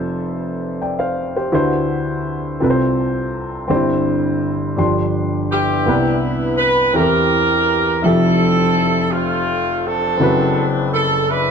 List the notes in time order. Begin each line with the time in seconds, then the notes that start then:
Already playing: F1 F2 F4 A4 C5 E5
0.82 D5 G5
0.99 C5 F5
1.36 G4 C5
1.52 D2 D3 E4 F#4 B4 C5
2.60 C2 C3 C4 F4 A4 B4
2.70 C5
3.68 G1 G2 C4 D4 G4 C5
3.76 E4
4.76 G1 G2 F3 D4 G4 C6
5.51 B3 E4 G4
5.86 C2 C3 B3 D4 E4 B4
6.58 B4
6.93 E2 E3 C4 E4 G4 A4 A#4
7.03 A#4
8.02 F1 F2 F3 C4 E4 G4 A4 E5
8.07 A4
9.11 A3 C4 F4
9.85 C4 D4 A4
10.18 F#1 F#2 C4 E4 F#4
10.23 B4
10.93 A4
11.30 D4 E4 B4